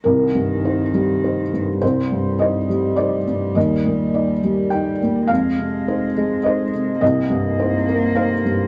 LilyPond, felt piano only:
\new Staff \with { instrumentName = "Felt piano" } { \time 3/4 \key c \minor \tempo 4 = 104 << { bes'2. | c''4 ees''4 d''4 | ees''2 g''4 | f''2 ees''8 r8 |
ees''2 f''4 | } \\ { c,8 g,8 <ees' c''>8 g8 <ees' c''>8 g,8 | c,8 g,8 <ees' c''>8 g8 <ees' c''>8 g,8 | ees,8 bes,8 <ees' d''>8 g8 <ees' d''>8 bes,8 | f,8 c8 <ees' c''>8 aes8 <ees' c''>8 c8 |
c,8 g,8 <ees' c''>8 bes8 <ees' c''>8 g,8 | } >> }